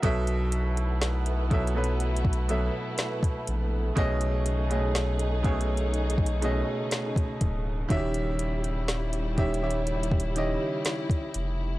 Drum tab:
HH |x--x--x--x--x--x--x-x-x-x-x-x-x-----x--x--x-----|x--x--x--x--x--x--x-x-x-x-x-x-x-----x--x--x-----|x--x--x--x--x--x--x-x-x-x-x-x-x-----x--x--x-----|
SD |------------o-----------------------o-----------|------------o-----------------------o-----------|------------o-----------------------o-----------|
BD |o-----------------o--------o-----------o--------|o-----------------o--------o-----------o--o-----|o-----------------o--------o-----------o--------|